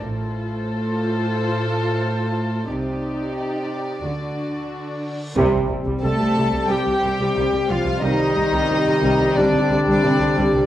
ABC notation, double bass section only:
X:1
M:4/4
L:1/16
Q:1/4=90
K:Cdor
V:1 name="Double bass section" clef=bass
A,,,4 z12 | C,,4 z4 D,,4 z4 | C,, C,, C,, C,, C,, C,, C,, C,, C,, C,, C,, C,, C,, C,, C,, C,, | C,, C,, C,, C,, C,, C,, C,, C,, C,, C,, C,, C,, C,, C,, C,, C,, |]